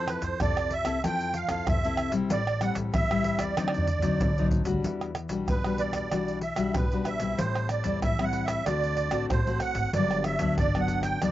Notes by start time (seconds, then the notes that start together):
Already playing: F2 F3 C4 E4 A4 C5
0.08 B4, pandeiro, tamborim
0.22 F2 C5, pandeiro, shaker, surdo
0.40 F2 C3 C4 E4 A4 D5, pandeiro, tamborim, shaker, surdo
0.57 pandeiro, tamborim, shaker
0.71 E5, pandeiro
0.85 C2 C4 E4 A4, pandeiro, tamborim, shaker, surdo
1.04 F2 F3 C4 E4 A4 G5, pandeiro, tamborim, shaker, surdo
1.20 pandeiro, shaker
1.34 F5, pandeiro
1.48 F2 C4 E4 A4 F5, pandeiro, tamborim, shaker, surdo
1.67 F2 C3 E5, pandeiro, tamborim, shaker, surdo
1.84 C4 E4 A4, pandeiro, shaker
1.97 pandeiro, tamborim
2.12 B1 G3 C4 E4, pandeiro, shaker, surdo
2.30 A1 A2 D5, pandeiro, shaker, surdo
2.47 pandeiro, tamborim, shaker
2.61 G3 C4 E4 F#5, pandeiro, tamborim, shaker
2.75 A1, pandeiro, shaker, surdo
2.94 A1 E3 E5, pandeiro, tamborim, shaker, surdo
3.11 G3 C4 E4, pandeiro, tamborim, shaker
3.24 pandeiro
3.39 E2 D5, pandeiro, tamborim, shaker, surdo
3.57 D2 D3 F#3 C4 D#4, pandeiro, tamborim, shaker, surdo
3.68 tamborim
3.74 pandeiro, shaker
3.78 surdo
3.87 surdo, pandeiro
4.00 F#3, surdo, pandeiro, shaker
4.02 D2 C4 D#4, surdo
4.20 D2 A2, pandeiro, shaker, surdo
4.38 F#3 C4 D#4, pandeiro, shaker
4.42 surdo
4.51 pandeiro, shaker, surdo
4.63 pandeiro, shaker, surdo
4.65 D2 G3 D4 F#4, surdo
4.74 surdo
4.84 E2 E3, pandeiro, shaker, surdo
5.01 pandeiro, tamborim, shaker
5.15 pandeiro, tamborim
5.29 B1 G3 D4 F#4, pandeiro, shaker, surdo
5.48 E2 B2 B4, pandeiro, tamborim, shaker, surdo
5.64 G3 D4 F#4, pandeiro, tamborim, shaker
5.78 D5, pandeiro
5.93 pandeiro, tamborim, shaker, surdo
6.12 B1 E3 G3 D4 F#4, pandeiro, tamborim, shaker, surdo
6.28 pandeiro, shaker
6.41 E5, pandeiro
6.56 B1 G3 D4 F#4, pandeiro, tamborim, shaker, surdo
6.74 B1 B2 B4, pandeiro, tamborim, shaker, surdo
6.92 G3 D4 F#4, pandeiro, shaker
7.05 E5, pandeiro, tamborim, shaker
7.20 B1 G3 C4 E4, pandeiro, shaker, surdo
7.38 A1 A2 C5, pandeiro, shaker, surdo
7.55 pandeiro, tamborim, shaker
7.69 D5, pandeiro, tamborim, shaker
7.84 E2 G3 C4 E4, pandeiro, shaker, surdo
8.02 A1 E3 E5, pandeiro, tamborim, shaker, surdo
8.19 G3 C4 E4, pandeiro, tamborim, shaker
8.24 F#5
8.33 pandeiro
8.45 E5, pandeiro, tamborim, shaker, surdo
8.66 D2 D3 A3 C4 F#4 D5, pandeiro, tamborim, shaker, surdo
8.84 pandeiro, shaker
8.97 pandeiro
9.11 A1 A3 C4 F#4, pandeiro, tamborim, shaker, surdo
9.30 A1 A2 C5, pandeiro, tamborim, shaker, surdo
9.46 A3 C4 F#4, pandeiro, shaker
9.60 F#5, pandeiro, tamborim, shaker
9.75 G#1, pandeiro, shaker, surdo
9.93 G1 G2 F#3 B3 D4 D5, pandeiro, shaker, surdo
10.11 pandeiro, tamborim, shaker
10.24 E5, pandeiro, tamborim
10.39 D2 F#3 B3 D4, pandeiro, shaker, surdo
10.58 G1 D3 D5, pandeiro, tamborim, shaker, surdo
10.75 F#3 B3 D4, pandeiro, tamborim, shaker
10.80 F#5
10.88 pandeiro, shaker
11.02 G5, pandeiro, tamborim, shaker, surdo
11.21 D2 G2 F#3 B3 D4 D5, pandeiro, tamborim, shaker, surdo